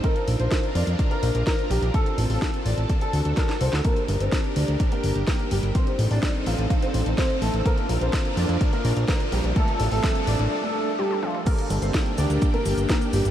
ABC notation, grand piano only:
X:1
M:4/4
L:1/16
Q:1/4=126
K:Gm
V:1 name="Grand piano"
B2 z c2 z d2 z B2 z B z G z | A2 z A2 z d2 z A2 z B z c z | [B,B]2 z [Cc]2 z [Dd]2 z [B,B]2 z [B,B] z [G,G] z | [Cc]2 z [Dd]2 z [Ff]2 z [Cc]2 z [Cc] z [A,A] z |
[B,B]2 z [Cc]2 z [Dd]2 z [B,B]2 z [B,B] z [G,G] z | [A,A]2 z [A,A]2 z [Dd]2 z [A,A]2 z [G,G] z [F,F] z | [B,B]2 z [Cc]2 z [Dd]2 z [B,B]2 z [B,B] z [G,G] z |]